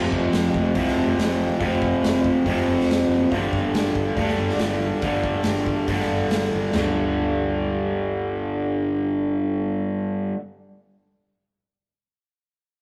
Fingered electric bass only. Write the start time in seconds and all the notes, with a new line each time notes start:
0.12 F1
0.33 F1
0.54 F1
0.76 C2
0.97 F1
1.18 F1
1.60 F1
2.03 F1
2.45 F1
2.66 F1
2.87 F1
3.09 F#1
3.32 G1
3.53 G1
3.75 G1
3.95 G1
4.17 D2
4.38 G1
4.60 G1
5.03 G1
5.46 G1
5.88 G1
6.10 G1
6.33 G1
6.54 G1
6.75 G1